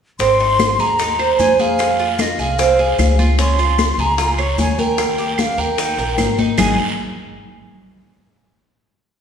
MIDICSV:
0, 0, Header, 1, 5, 480
1, 0, Start_track
1, 0, Key_signature, -4, "major"
1, 0, Tempo, 398936
1, 238, Time_signature, 4, 2, 24, 8
1, 11077, End_track
2, 0, Start_track
2, 0, Title_t, "Flute"
2, 0, Program_c, 0, 73
2, 235, Note_on_c, 0, 84, 99
2, 962, Note_on_c, 0, 82, 96
2, 980, Note_off_c, 0, 84, 0
2, 1674, Note_on_c, 0, 80, 87
2, 1692, Note_off_c, 0, 82, 0
2, 1929, Note_on_c, 0, 77, 87
2, 1947, Note_off_c, 0, 80, 0
2, 2656, Note_on_c, 0, 75, 82
2, 2674, Note_off_c, 0, 77, 0
2, 2897, Note_on_c, 0, 77, 94
2, 2915, Note_off_c, 0, 75, 0
2, 3847, Note_off_c, 0, 77, 0
2, 4091, Note_on_c, 0, 84, 99
2, 4815, Note_on_c, 0, 82, 90
2, 4833, Note_off_c, 0, 84, 0
2, 5201, Note_off_c, 0, 82, 0
2, 5530, Note_on_c, 0, 80, 85
2, 5676, Note_off_c, 0, 80, 0
2, 5676, Note_on_c, 0, 80, 63
2, 5777, Note_on_c, 0, 79, 81
2, 5795, Note_off_c, 0, 80, 0
2, 6494, Note_on_c, 0, 77, 77
2, 6512, Note_off_c, 0, 79, 0
2, 6737, Note_on_c, 0, 79, 81
2, 6755, Note_off_c, 0, 77, 0
2, 7685, Note_off_c, 0, 79, 0
2, 7925, Note_on_c, 0, 80, 68
2, 8143, Note_off_c, 0, 80, 0
2, 11077, End_track
3, 0, Start_track
3, 0, Title_t, "Cuban tres"
3, 0, Program_c, 1, 25
3, 237, Note_on_c, 1, 60, 72
3, 471, Note_off_c, 1, 60, 0
3, 486, Note_on_c, 1, 63, 63
3, 948, Note_off_c, 1, 63, 0
3, 960, Note_on_c, 1, 68, 70
3, 1192, Note_off_c, 1, 68, 0
3, 1200, Note_on_c, 1, 63, 69
3, 1433, Note_off_c, 1, 63, 0
3, 1435, Note_on_c, 1, 72, 66
3, 1903, Note_off_c, 1, 72, 0
3, 1918, Note_on_c, 1, 68, 75
3, 2384, Note_off_c, 1, 68, 0
3, 2399, Note_on_c, 1, 65, 61
3, 2864, Note_off_c, 1, 65, 0
3, 2874, Note_on_c, 1, 68, 72
3, 3109, Note_off_c, 1, 68, 0
3, 3117, Note_on_c, 1, 60, 73
3, 3350, Note_off_c, 1, 60, 0
3, 3356, Note_on_c, 1, 68, 69
3, 3822, Note_off_c, 1, 68, 0
3, 3838, Note_on_c, 1, 65, 77
3, 4070, Note_off_c, 1, 65, 0
3, 4076, Note_on_c, 1, 61, 76
3, 4309, Note_off_c, 1, 61, 0
3, 4318, Note_on_c, 1, 65, 67
3, 4783, Note_off_c, 1, 65, 0
3, 4801, Note_on_c, 1, 68, 70
3, 5031, Note_off_c, 1, 68, 0
3, 5037, Note_on_c, 1, 65, 67
3, 5269, Note_off_c, 1, 65, 0
3, 5277, Note_on_c, 1, 73, 76
3, 5741, Note_off_c, 1, 73, 0
3, 5762, Note_on_c, 1, 70, 73
3, 6224, Note_off_c, 1, 70, 0
3, 6236, Note_on_c, 1, 67, 65
3, 6700, Note_off_c, 1, 67, 0
3, 6714, Note_on_c, 1, 70, 71
3, 6947, Note_off_c, 1, 70, 0
3, 6961, Note_on_c, 1, 63, 79
3, 7190, Note_off_c, 1, 63, 0
3, 7208, Note_on_c, 1, 70, 68
3, 7666, Note_off_c, 1, 70, 0
3, 7684, Note_on_c, 1, 63, 73
3, 7905, Note_off_c, 1, 63, 0
3, 7913, Note_on_c, 1, 56, 81
3, 7920, Note_on_c, 1, 63, 74
3, 7929, Note_on_c, 1, 68, 91
3, 8136, Note_off_c, 1, 56, 0
3, 8140, Note_off_c, 1, 63, 0
3, 8145, Note_off_c, 1, 68, 0
3, 11077, End_track
4, 0, Start_track
4, 0, Title_t, "Upright bass"
4, 0, Program_c, 2, 32
4, 230, Note_on_c, 2, 32, 81
4, 907, Note_off_c, 2, 32, 0
4, 950, Note_on_c, 2, 39, 80
4, 1627, Note_off_c, 2, 39, 0
4, 1670, Note_on_c, 2, 41, 82
4, 2802, Note_off_c, 2, 41, 0
4, 2871, Note_on_c, 2, 36, 84
4, 3546, Note_off_c, 2, 36, 0
4, 3588, Note_on_c, 2, 37, 85
4, 4719, Note_off_c, 2, 37, 0
4, 4783, Note_on_c, 2, 37, 91
4, 5460, Note_off_c, 2, 37, 0
4, 5503, Note_on_c, 2, 39, 78
4, 6636, Note_off_c, 2, 39, 0
4, 6708, Note_on_c, 2, 39, 83
4, 7157, Note_off_c, 2, 39, 0
4, 7189, Note_on_c, 2, 34, 63
4, 7414, Note_off_c, 2, 34, 0
4, 7430, Note_on_c, 2, 32, 77
4, 7855, Note_off_c, 2, 32, 0
4, 7913, Note_on_c, 2, 32, 84
4, 8136, Note_off_c, 2, 32, 0
4, 11077, End_track
5, 0, Start_track
5, 0, Title_t, "Drums"
5, 233, Note_on_c, 9, 70, 57
5, 241, Note_on_c, 9, 63, 35
5, 241, Note_on_c, 9, 74, 65
5, 242, Note_on_c, 9, 60, 62
5, 353, Note_off_c, 9, 70, 0
5, 361, Note_off_c, 9, 63, 0
5, 361, Note_off_c, 9, 74, 0
5, 363, Note_off_c, 9, 60, 0
5, 477, Note_on_c, 9, 70, 26
5, 479, Note_on_c, 9, 60, 32
5, 479, Note_on_c, 9, 63, 33
5, 597, Note_off_c, 9, 70, 0
5, 599, Note_off_c, 9, 60, 0
5, 599, Note_off_c, 9, 63, 0
5, 715, Note_on_c, 9, 63, 89
5, 717, Note_on_c, 9, 70, 65
5, 718, Note_on_c, 9, 75, 54
5, 720, Note_on_c, 9, 60, 56
5, 720, Note_on_c, 9, 73, 55
5, 836, Note_off_c, 9, 63, 0
5, 837, Note_off_c, 9, 70, 0
5, 838, Note_off_c, 9, 75, 0
5, 840, Note_off_c, 9, 60, 0
5, 840, Note_off_c, 9, 73, 0
5, 954, Note_on_c, 9, 70, 27
5, 959, Note_on_c, 9, 73, 63
5, 1075, Note_off_c, 9, 70, 0
5, 1080, Note_off_c, 9, 73, 0
5, 1189, Note_on_c, 9, 70, 65
5, 1199, Note_on_c, 9, 60, 61
5, 1200, Note_on_c, 9, 74, 64
5, 1201, Note_on_c, 9, 63, 33
5, 1310, Note_off_c, 9, 70, 0
5, 1319, Note_off_c, 9, 60, 0
5, 1320, Note_off_c, 9, 74, 0
5, 1321, Note_off_c, 9, 63, 0
5, 1433, Note_on_c, 9, 70, 28
5, 1438, Note_on_c, 9, 75, 60
5, 1439, Note_on_c, 9, 60, 32
5, 1441, Note_on_c, 9, 63, 28
5, 1553, Note_off_c, 9, 70, 0
5, 1559, Note_off_c, 9, 75, 0
5, 1560, Note_off_c, 9, 60, 0
5, 1561, Note_off_c, 9, 63, 0
5, 1672, Note_on_c, 9, 70, 59
5, 1678, Note_on_c, 9, 63, 73
5, 1681, Note_on_c, 9, 73, 61
5, 1684, Note_on_c, 9, 60, 35
5, 1684, Note_on_c, 9, 61, 76
5, 1792, Note_off_c, 9, 70, 0
5, 1799, Note_off_c, 9, 63, 0
5, 1802, Note_off_c, 9, 73, 0
5, 1804, Note_off_c, 9, 60, 0
5, 1804, Note_off_c, 9, 61, 0
5, 1916, Note_on_c, 9, 63, 66
5, 1916, Note_on_c, 9, 70, 26
5, 1922, Note_on_c, 9, 60, 33
5, 1925, Note_on_c, 9, 73, 66
5, 2036, Note_off_c, 9, 70, 0
5, 2037, Note_off_c, 9, 63, 0
5, 2042, Note_off_c, 9, 60, 0
5, 2045, Note_off_c, 9, 73, 0
5, 2151, Note_on_c, 9, 70, 57
5, 2155, Note_on_c, 9, 63, 34
5, 2156, Note_on_c, 9, 75, 59
5, 2166, Note_on_c, 9, 74, 68
5, 2167, Note_on_c, 9, 60, 63
5, 2271, Note_off_c, 9, 70, 0
5, 2275, Note_off_c, 9, 63, 0
5, 2276, Note_off_c, 9, 75, 0
5, 2286, Note_off_c, 9, 74, 0
5, 2287, Note_off_c, 9, 60, 0
5, 2395, Note_on_c, 9, 70, 26
5, 2397, Note_on_c, 9, 63, 32
5, 2405, Note_on_c, 9, 60, 33
5, 2515, Note_off_c, 9, 70, 0
5, 2517, Note_off_c, 9, 63, 0
5, 2525, Note_off_c, 9, 60, 0
5, 2632, Note_on_c, 9, 70, 68
5, 2635, Note_on_c, 9, 63, 87
5, 2636, Note_on_c, 9, 75, 55
5, 2641, Note_on_c, 9, 60, 62
5, 2646, Note_on_c, 9, 73, 65
5, 2752, Note_off_c, 9, 70, 0
5, 2755, Note_off_c, 9, 63, 0
5, 2757, Note_off_c, 9, 75, 0
5, 2762, Note_off_c, 9, 60, 0
5, 2766, Note_off_c, 9, 73, 0
5, 2877, Note_on_c, 9, 70, 27
5, 2885, Note_on_c, 9, 73, 66
5, 2998, Note_off_c, 9, 70, 0
5, 3005, Note_off_c, 9, 73, 0
5, 3115, Note_on_c, 9, 70, 69
5, 3119, Note_on_c, 9, 60, 66
5, 3120, Note_on_c, 9, 63, 33
5, 3124, Note_on_c, 9, 74, 68
5, 3235, Note_off_c, 9, 70, 0
5, 3239, Note_off_c, 9, 60, 0
5, 3240, Note_off_c, 9, 63, 0
5, 3244, Note_off_c, 9, 74, 0
5, 3356, Note_on_c, 9, 70, 27
5, 3361, Note_on_c, 9, 63, 30
5, 3366, Note_on_c, 9, 60, 33
5, 3476, Note_off_c, 9, 70, 0
5, 3481, Note_off_c, 9, 63, 0
5, 3486, Note_off_c, 9, 60, 0
5, 3595, Note_on_c, 9, 70, 66
5, 3599, Note_on_c, 9, 60, 32
5, 3599, Note_on_c, 9, 61, 86
5, 3599, Note_on_c, 9, 75, 58
5, 3602, Note_on_c, 9, 63, 70
5, 3602, Note_on_c, 9, 73, 62
5, 3716, Note_off_c, 9, 70, 0
5, 3719, Note_off_c, 9, 60, 0
5, 3719, Note_off_c, 9, 61, 0
5, 3719, Note_off_c, 9, 75, 0
5, 3723, Note_off_c, 9, 63, 0
5, 3723, Note_off_c, 9, 73, 0
5, 3837, Note_on_c, 9, 60, 33
5, 3837, Note_on_c, 9, 70, 28
5, 3840, Note_on_c, 9, 63, 72
5, 3840, Note_on_c, 9, 73, 65
5, 3957, Note_off_c, 9, 70, 0
5, 3958, Note_off_c, 9, 60, 0
5, 3960, Note_off_c, 9, 63, 0
5, 3960, Note_off_c, 9, 73, 0
5, 4076, Note_on_c, 9, 60, 63
5, 4076, Note_on_c, 9, 70, 61
5, 4081, Note_on_c, 9, 74, 65
5, 4084, Note_on_c, 9, 63, 33
5, 4196, Note_off_c, 9, 60, 0
5, 4197, Note_off_c, 9, 70, 0
5, 4201, Note_off_c, 9, 74, 0
5, 4205, Note_off_c, 9, 63, 0
5, 4315, Note_on_c, 9, 60, 34
5, 4315, Note_on_c, 9, 70, 29
5, 4322, Note_on_c, 9, 63, 30
5, 4435, Note_off_c, 9, 60, 0
5, 4435, Note_off_c, 9, 70, 0
5, 4442, Note_off_c, 9, 63, 0
5, 4555, Note_on_c, 9, 63, 94
5, 4555, Note_on_c, 9, 70, 66
5, 4557, Note_on_c, 9, 75, 63
5, 4559, Note_on_c, 9, 60, 60
5, 4562, Note_on_c, 9, 73, 62
5, 4675, Note_off_c, 9, 70, 0
5, 4676, Note_off_c, 9, 63, 0
5, 4677, Note_off_c, 9, 75, 0
5, 4680, Note_off_c, 9, 60, 0
5, 4682, Note_off_c, 9, 73, 0
5, 4795, Note_on_c, 9, 70, 29
5, 4800, Note_on_c, 9, 73, 68
5, 4915, Note_off_c, 9, 70, 0
5, 4920, Note_off_c, 9, 73, 0
5, 5033, Note_on_c, 9, 60, 67
5, 5036, Note_on_c, 9, 70, 70
5, 5038, Note_on_c, 9, 74, 68
5, 5043, Note_on_c, 9, 63, 31
5, 5153, Note_off_c, 9, 60, 0
5, 5156, Note_off_c, 9, 70, 0
5, 5158, Note_off_c, 9, 74, 0
5, 5164, Note_off_c, 9, 63, 0
5, 5274, Note_on_c, 9, 60, 33
5, 5274, Note_on_c, 9, 70, 25
5, 5276, Note_on_c, 9, 75, 67
5, 5282, Note_on_c, 9, 63, 32
5, 5394, Note_off_c, 9, 60, 0
5, 5394, Note_off_c, 9, 70, 0
5, 5397, Note_off_c, 9, 75, 0
5, 5402, Note_off_c, 9, 63, 0
5, 5514, Note_on_c, 9, 60, 33
5, 5514, Note_on_c, 9, 61, 83
5, 5515, Note_on_c, 9, 70, 60
5, 5521, Note_on_c, 9, 63, 73
5, 5523, Note_on_c, 9, 73, 63
5, 5635, Note_off_c, 9, 60, 0
5, 5635, Note_off_c, 9, 61, 0
5, 5635, Note_off_c, 9, 70, 0
5, 5642, Note_off_c, 9, 63, 0
5, 5643, Note_off_c, 9, 73, 0
5, 5751, Note_on_c, 9, 60, 34
5, 5758, Note_on_c, 9, 63, 72
5, 5758, Note_on_c, 9, 70, 28
5, 5759, Note_on_c, 9, 73, 64
5, 5871, Note_off_c, 9, 60, 0
5, 5878, Note_off_c, 9, 70, 0
5, 5879, Note_off_c, 9, 63, 0
5, 5880, Note_off_c, 9, 73, 0
5, 5994, Note_on_c, 9, 70, 63
5, 5995, Note_on_c, 9, 60, 65
5, 5996, Note_on_c, 9, 75, 60
5, 6000, Note_on_c, 9, 74, 71
5, 6003, Note_on_c, 9, 63, 36
5, 6115, Note_off_c, 9, 60, 0
5, 6115, Note_off_c, 9, 70, 0
5, 6117, Note_off_c, 9, 75, 0
5, 6120, Note_off_c, 9, 74, 0
5, 6123, Note_off_c, 9, 63, 0
5, 6236, Note_on_c, 9, 70, 28
5, 6241, Note_on_c, 9, 63, 32
5, 6242, Note_on_c, 9, 60, 33
5, 6357, Note_off_c, 9, 70, 0
5, 6362, Note_off_c, 9, 60, 0
5, 6362, Note_off_c, 9, 63, 0
5, 6471, Note_on_c, 9, 75, 66
5, 6478, Note_on_c, 9, 73, 67
5, 6482, Note_on_c, 9, 63, 90
5, 6482, Note_on_c, 9, 70, 64
5, 6483, Note_on_c, 9, 60, 55
5, 6592, Note_off_c, 9, 75, 0
5, 6599, Note_off_c, 9, 73, 0
5, 6603, Note_off_c, 9, 63, 0
5, 6603, Note_off_c, 9, 70, 0
5, 6604, Note_off_c, 9, 60, 0
5, 6717, Note_on_c, 9, 70, 29
5, 6718, Note_on_c, 9, 73, 65
5, 6838, Note_off_c, 9, 70, 0
5, 6838, Note_off_c, 9, 73, 0
5, 6956, Note_on_c, 9, 74, 69
5, 6958, Note_on_c, 9, 60, 66
5, 6959, Note_on_c, 9, 70, 70
5, 6964, Note_on_c, 9, 63, 31
5, 7076, Note_off_c, 9, 74, 0
5, 7079, Note_off_c, 9, 60, 0
5, 7080, Note_off_c, 9, 70, 0
5, 7085, Note_off_c, 9, 63, 0
5, 7196, Note_on_c, 9, 60, 35
5, 7201, Note_on_c, 9, 70, 28
5, 7202, Note_on_c, 9, 63, 31
5, 7316, Note_off_c, 9, 60, 0
5, 7321, Note_off_c, 9, 70, 0
5, 7323, Note_off_c, 9, 63, 0
5, 7434, Note_on_c, 9, 60, 34
5, 7434, Note_on_c, 9, 61, 89
5, 7439, Note_on_c, 9, 75, 61
5, 7440, Note_on_c, 9, 70, 58
5, 7440, Note_on_c, 9, 73, 63
5, 7442, Note_on_c, 9, 63, 70
5, 7554, Note_off_c, 9, 60, 0
5, 7554, Note_off_c, 9, 61, 0
5, 7559, Note_off_c, 9, 75, 0
5, 7560, Note_off_c, 9, 70, 0
5, 7560, Note_off_c, 9, 73, 0
5, 7562, Note_off_c, 9, 63, 0
5, 7674, Note_on_c, 9, 60, 32
5, 7681, Note_on_c, 9, 70, 27
5, 7681, Note_on_c, 9, 73, 61
5, 7682, Note_on_c, 9, 63, 83
5, 7794, Note_off_c, 9, 60, 0
5, 7801, Note_off_c, 9, 70, 0
5, 7801, Note_off_c, 9, 73, 0
5, 7802, Note_off_c, 9, 63, 0
5, 7912, Note_on_c, 9, 61, 84
5, 7917, Note_on_c, 9, 74, 96
5, 7918, Note_on_c, 9, 75, 89
5, 7919, Note_on_c, 9, 70, 86
5, 7921, Note_on_c, 9, 64, 100
5, 8033, Note_off_c, 9, 61, 0
5, 8038, Note_off_c, 9, 74, 0
5, 8038, Note_off_c, 9, 75, 0
5, 8039, Note_off_c, 9, 70, 0
5, 8041, Note_off_c, 9, 64, 0
5, 11077, End_track
0, 0, End_of_file